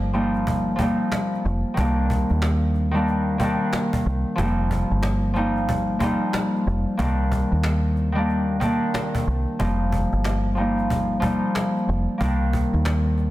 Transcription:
Already playing: G1 F3 G3 A#3 C4 D#4
0.13 F3 G3 A#3 C4 D#4, cajon slap
0.35 cajon slap
0.47 cajon bass
0.76 F3 G3 C4 D#4, cajon bass
0.82 A#3
1.12 cajon slap
1.34 cajon slap
1.45 F1, cajon slap
1.74 C2 D#3 G3 C4 D4, cajon bass
1.80 A#3
2.10 cajon bass
2.30 D#2, cajon slap
2.42 cajon slap
2.74 cajon slap
2.91 D#3 G3 C4 D4
2.96 A#3, cajon slap
3.08 cajon slap
3.38 D#3 G3 A#3 C4, cajon bass
3.43 D4
3.73 cajon slap
3.93 cajon bass
4.06 C2, cajon slap
4.35 F1 F3 G3 C4 D#4, cajon bass
4.41 A#3
4.71 cajon bass
4.90 G1, cajon slap
5.03 cajon slap
5.33 F3 G3 C4 D#4, cajon slap
5.38 A#3
5.56 cajon slap
5.69 cajon bass
5.99 F3 G3 A#3 C4 D#4, cajon bass
6.33 cajon slap
6.55 cajon slap
6.67 F1, cajon slap
6.97 C2 D#3 G3 A#3 C4 D4, cajon bass
7.32 cajon bass
7.52 D#2
7.63 cajon slap
7.96 cajon slap
8.12 D#3 G3 C4 D4
8.18 A#3
8.30 cajon slap
8.60 D#3 G3 A#3 C4 D4, cajon bass
8.94 cajon slap
9.15 cajon bass
9.28 C2, cajon slap
9.59 F1 F3 G3 A#3 C4 D#4, cajon bass
9.92 cajon bass
10.12 G1, cajon slap
10.24 cajon slap
10.55 F3 G3 C4 D#4, cajon slap
10.60 A#3
10.78 cajon slap
10.90 cajon bass
11.20 F3 G3 C4 D#4, cajon bass
11.24 A#3
11.55 cajon slap
11.77 cajon slap
11.89 F1, cajon slap
12.18 C2 D#3 G3 A#3 C4, cajon bass
12.23 D4
12.53 cajon bass
12.73 D#2, cajon slap
12.85 cajon slap
13.18 cajon slap

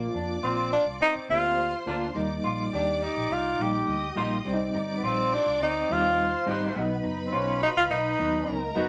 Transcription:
Already playing: A#3 D4 F4 D5 D6
0.14 F2 D4
0.43 A#1 A#3 C4 D4 F4
0.73 A#3 D4 F4
0.86 C2
1.01 C4 D#4
1.15 muted fingered electric bass stroke
1.29 D2 A#3 D4 F4 G4 C5 C6
1.86 D2 A#3 D4 F4
2.14 D#2 G3 A#3 D#4 D5 D6
2.44 A#1 F4
2.73 D#2 A#3 D4 D#4 G4
3.01 A#3 D#4 G4
3.17 A#1
3.30 C2 D#4 F4 F5
3.59 A#1 G3 A#3 D#4 G4 G5
3.87 D2 D#5 D#6
4.16 A#1 G3 A#3 D#4 F4 G4
4.45 C2 G3 C4 D4 D5 D6
4.53 D#4
4.74 G1 D#4
4.97 B3 B4
5.03 A#1 C4 D#4 F4 G4 C5
5.32 C4 D4 D#4 G4 D5
5.46 C2
5.60 D2 C4 D#4 D#5
5.89 D#2 G3 C4 D#4 F4 G4 F5
6.18 C5 C6
6.46 G#1 G3 B3 C4 D#4 G4
6.75 B1 F#3 B3 D#4 B4 B5
7.03 F#1 D#4
7.26 C4 C5
7.32 B1 B3 C#4 D#4 F4 F#4 C#5
7.61 B3 D#4 F#4 D#5
7.76 C#2 F4 F5
7.90 B1 D#4 D#5
8.18 D#2 F#3 B3 D#4 F#4
8.48 C#2 A#4 A#5
8.75 F#1 F#3 B3 D#4 F#4

